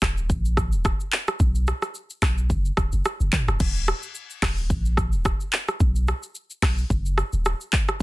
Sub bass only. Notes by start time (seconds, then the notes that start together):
0.02 D#1
0.30 A#1
0.73 D#1
1.40 B1
2.22 B1
2.50 F#1
2.77 D#1
2.93 F#1
3.20 F#1
3.48 F1
3.60 D#1
4.42 D#1
4.70 A#1
5.13 D#1
5.80 B1
6.62 B1
6.90 F#1
7.33 D#1